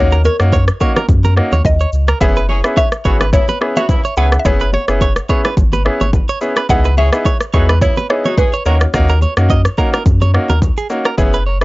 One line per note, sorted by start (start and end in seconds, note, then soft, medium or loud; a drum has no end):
0.00 0.29 D#2 loud
0.00 0.13 A#3 medium
0.00 0.13 C#4 medium
0.00 0.13 D#4 medium
0.00 0.13 F#4 loud
0.00 0.26 C#5 loud
0.12 0.21 A#4 medium
0.12 shaker medium
0.25 1.33 A#4 medium
0.25 0.36 C#5 medium
0.25 low bongo medium
0.25 shaker medium
0.40 0.70 F#2 loud
0.40 0.54 A#3 medium
0.40 0.54 C#4 medium
0.40 0.54 D#4 medium
0.40 0.54 F#4 medium
0.40 cross-stick medium
0.40 shaker soft
0.53 0.64 C#5 medium
0.53 kick loud
0.53 high bongo medium
0.53 shaker medium
0.68 cross-stick medium
0.68 shaker medium
0.80 0.97 A#3 medium
0.80 0.97 C#4 medium
0.80 0.97 D#4 medium
0.80 0.97 F#4 medium
0.80 0.92 C#5 medium
0.80 kick medium
0.80 shaker medium
0.96 1.05 A#4 medium
0.96 cross-stick medium
0.96 high bongo medium
0.96 low bongo medium
0.96 shaker soft
1.09 1.41 F#2 loud
1.09 kick loud
1.09 low conga medium
1.09 shaker medium
1.24 1.33 A#4 medium
1.24 low bongo medium
1.24 shaker medium
1.36 1.53 A#3 medium
1.36 1.53 C#4 medium
1.36 1.53 D#4 medium
1.36 1.53 F#4 medium
1.36 cross-stick medium
1.52 1.62 D#2 medium
1.52 1.61 C#5 medium
1.52 low bongo medium
1.52 shaker soft
1.65 1.85 D#2 medium
1.65 2.23 D#5 medium
1.65 kick loud
1.65 high bongo medium
1.65 low conga medium
1.65 shaker medium
1.80 1.89 C#5 medium
1.80 shaker medium
1.93 2.14 C#2 medium
1.93 shaker medium
2.08 2.17 A#4 medium
2.08 cross-stick loud
2.08 shaker medium
2.20 2.62 F#1 loud
2.20 2.37 B3 medium
2.20 2.37 C#4 medium
2.20 2.37 E4 medium
2.20 2.37 G#4 loud
2.20 2.76 E5 loud
2.20 kick loud
2.20 low conga medium
2.20 shaker medium
2.36 2.46 B4 medium
2.36 shaker medium
2.49 2.61 E3 medium
2.49 2.61 C#4 medium
2.49 2.61 G#4 medium
2.49 2.60 C#5 medium
2.49 low bongo medium
2.64 2.78 B3 medium
2.64 2.78 C#4 medium
2.64 2.78 E4 medium
2.64 2.78 G#4 medium
2.64 cross-stick loud
2.64 shaker soft
2.77 2.88 C#5 medium
2.77 3.29 E5 loud
2.77 kick loud
2.77 high bongo medium
2.77 shaker medium
2.92 cross-stick medium
2.92 shaker medium
3.05 3.37 G#1 loud
3.05 3.17 C#3 medium
3.05 3.21 B3 medium
3.05 3.17 B3 medium
3.05 3.21 C#4 medium
3.05 3.21 E4 medium
3.05 3.17 F#4 medium
3.05 3.22 G#4 medium
3.05 3.16 C#5 medium
3.05 kick medium
3.05 shaker medium
3.21 3.30 B4 medium
3.21 cross-stick medium
3.21 high bongo medium
3.21 shaker medium
3.33 3.45 C#3 medium
3.33 3.45 B3 medium
3.33 3.45 E4 loud
3.33 3.78 C#5 loud
3.33 kick loud
3.33 low conga medium
3.33 shaker medium
3.48 3.58 B4 medium
3.48 low bongo medium
3.48 shaker medium
3.61 3.77 B3 medium
3.61 3.77 C#4 medium
3.61 3.77 E4 medium
3.61 3.78 G#4 medium
3.61 cross-stick medium
3.76 3.87 C#3 medium
3.76 3.87 B3 medium
3.76 3.87 F#4 loud
3.76 3.86 C#5 medium
3.76 4.19 E5 loud
3.76 low bongo medium
3.76 shaker medium
3.89 4.01 C#3 medium
3.89 4.01 B3 medium
3.89 4.01 E4 loud
3.89 kick loud
3.89 high bongo medium
3.89 low conga medium
3.89 shaker medium
4.04 4.14 C#5 medium
4.04 shaker medium
4.17 4.38 C#2 loud
4.17 4.26 E3 medium
4.17 4.33 B3 medium
4.17 4.26 C#4 medium
4.17 4.33 C#4 medium
4.17 4.34 E4 medium
4.17 4.26 G#4 medium
4.17 4.34 G#4 medium
4.17 4.28 B4 medium
4.17 4.40 F#5 loud
4.17 shaker medium
4.32 cross-stick loud
4.32 shaker medium
4.39 4.45 E5 medium
4.45 4.77 F#1 loud
4.45 4.61 B3 medium
4.45 4.61 C#4 medium
4.45 4.62 E4 medium
4.45 4.62 G#4 loud
4.45 4.72 C#5 loud
4.45 kick loud
4.45 low conga medium
4.45 shaker medium
4.60 4.70 B4 medium
4.60 shaker medium
4.73 5.82 C#5 medium
4.73 4.84 C#5 medium
4.73 low bongo medium
4.88 5.19 F#1 medium
4.88 5.02 B3 medium
4.88 5.02 C#4 medium
4.88 5.02 E4 medium
4.88 5.02 G#4 medium
4.88 cross-stick medium
4.88 shaker soft
5.01 5.13 C#5 medium
5.01 kick medium
5.01 high bongo medium
5.01 shaker medium
5.16 cross-stick medium
5.16 shaker medium
5.29 5.46 B3 medium
5.29 5.46 C#4 medium
5.29 5.46 E4 medium
5.29 5.46 G#4 medium
5.29 5.41 C#5 medium
5.29 kick medium
5.29 shaker medium
5.45 5.54 B4 medium
5.45 cross-stick loud
5.45 high bongo medium
5.45 shaker medium
5.57 5.89 G#1 loud
5.57 kick loud
5.57 low conga medium
5.57 shaker medium
5.73 5.82 B4 medium
5.73 low bongo medium
5.73 shaker medium
5.85 6.02 B3 medium
5.85 6.02 C#4 medium
5.85 6.02 E4 medium
5.85 6.02 G#4 medium
5.85 cross-stick medium
6.01 6.21 G#1 medium
6.01 6.10 C#5 medium
6.01 low bongo medium
6.01 shaker medium
6.13 kick loud
6.13 high bongo medium
6.13 low conga medium
6.13 shaker medium
6.29 6.38 C#5 medium
6.29 shaker medium
6.41 6.58 B3 medium
6.41 6.58 C#4 medium
6.41 6.58 E4 medium
6.41 6.58 G#4 medium
6.41 shaker medium
6.56 6.66 B4 medium
6.56 cross-stick loud
6.56 shaker medium
6.69 7.11 C#2 loud
6.69 6.86 B3 medium
6.69 6.86 D#4 medium
6.69 6.86 E4 medium
6.69 6.86 G#4 loud
6.69 6.96 F#5 loud
6.69 kick loud
6.69 low conga medium
6.69 shaker medium
6.85 6.94 B4 medium
6.85 shaker medium
6.97 7.10 E3 medium
6.97 7.10 C#4 medium
6.97 7.10 G#4 medium
6.97 7.09 C#5 medium
6.97 7.84 E5 loud
6.97 low bongo medium
7.13 7.26 B3 medium
7.13 7.27 D#4 medium
7.13 7.27 E4 medium
7.13 7.27 G#4 medium
7.13 cross-stick loud
7.13 shaker soft
7.25 7.37 C#5 medium
7.25 kick medium
7.25 high bongo medium
7.25 shaker medium
7.41 cross-stick medium
7.41 shaker medium
7.53 7.86 E2 loud
7.53 7.66 F#3 medium
7.53 7.70 B3 medium
7.53 7.70 D#4 medium
7.53 7.66 D#4 medium
7.53 7.70 E4 medium
7.53 7.66 F#4 medium
7.53 7.70 G#4 medium
7.53 7.65 C#5 medium
7.53 kick medium
7.53 shaker medium
7.69 7.78 B4 medium
7.69 cross-stick loud
7.69 high bongo medium
7.69 shaker soft
7.81 7.94 C#3 medium
7.81 7.94 B3 medium
7.81 7.94 E4 loud
7.81 7.95 C#5 loud
7.81 kick loud
7.81 low conga medium
7.81 shaker medium
7.97 8.06 B4 medium
7.97 low bongo medium
7.97 shaker medium
8.09 8.26 B3 medium
8.09 8.26 D#4 medium
8.09 8.26 E4 medium
8.09 8.26 G#4 medium
8.09 8.39 C#5 medium
8.09 cross-stick medium
8.25 8.35 F#3 medium
8.25 8.35 D#4 medium
8.25 8.35 F#4 loud
8.25 8.34 C#5 medium
8.25 low bongo medium
8.25 shaker medium
8.38 8.50 E3 medium
8.38 8.50 C#4 medium
8.38 8.50 G#4 loud
8.38 8.67 B4 medium
8.38 kick loud
8.38 high bongo medium
8.38 low conga medium
8.38 shaker medium
8.53 8.62 C#5 medium
8.53 shaker medium
8.65 8.86 D#2 medium
8.65 8.75 D#3 medium
8.65 8.82 A#3 medium
8.65 8.82 C#4 medium
8.65 8.75 C#4 medium
8.65 8.82 D#4 medium
8.65 8.75 F#4 medium
8.65 8.82 F#4 medium
8.65 8.77 A#4 medium
8.65 9.74 C#5 medium
8.65 shaker medium
8.81 cross-stick loud
8.81 shaker medium
8.94 9.26 D#2 loud
8.94 9.10 A#3 loud
8.94 9.10 C#4 medium
8.94 9.10 D#4 medium
8.94 9.10 F#4 loud
8.94 kick loud
8.94 cross-stick loud
8.94 low conga medium
8.94 shaker medium
9.09 9.18 A#4 medium
9.09 shaker medium
9.22 9.33 C#5 medium
9.22 low bongo medium
9.22 shaker medium
9.37 9.67 F#2 loud
9.37 9.51 A#3 medium
9.37 9.51 C#4 medium
9.37 9.51 D#4 medium
9.37 9.51 F#4 medium
9.37 cross-stick loud
9.37 shaker soft
9.50 9.61 D#5 medium
9.50 kick medium
9.50 high bongo medium
9.50 shaker medium
9.65 cross-stick medium
9.65 shaker medium
9.78 9.94 A#3 medium
9.78 9.94 C#4 medium
9.78 9.94 D#4 medium
9.78 9.94 F#4 medium
9.78 9.89 A#4 medium
9.78 kick medium
9.78 shaker medium
9.94 10.02 A#4 medium
9.94 cross-stick loud
9.94 high bongo medium
9.94 shaker medium
10.06 10.38 F#2 loud
10.06 kick loud
10.06 low conga medium
10.06 shaker medium
10.21 10.31 C#5 medium
10.21 low bongo medium
10.21 shaker medium
10.34 10.50 A#3 medium
10.34 10.50 C#4 medium
10.34 10.50 D#4 medium
10.34 10.50 F#4 medium
10.34 cross-stick medium
10.49 10.70 D#2 medium
10.49 10.59 A#4 medium
10.49 low bongo medium
10.49 shaker medium
10.62 kick loud
10.62 high bongo medium
10.62 low conga medium
10.62 shaker medium
10.77 10.87 G#4 medium
10.77 shaker medium
10.90 11.06 A#3 medium
10.90 11.06 C#4 medium
10.90 11.06 D#4 medium
10.90 11.07 F#4 medium
10.90 shaker medium
11.05 11.15 A#4 medium
11.05 cross-stick loud
11.05 shaker medium
11.18 11.64 F#1 loud
11.18 11.34 B3 medium
11.18 11.34 C#4 medium
11.18 11.34 E4 medium
11.18 11.34 G#4 loud
11.18 kick loud
11.18 low conga medium
11.18 shaker medium
11.33 11.43 B4 medium
11.33 shaker soft
11.46 11.57 C#5 medium
11.61 11.64 B3 medium
11.61 11.64 C#4 medium
11.61 cross-stick medium
11.61 shaker soft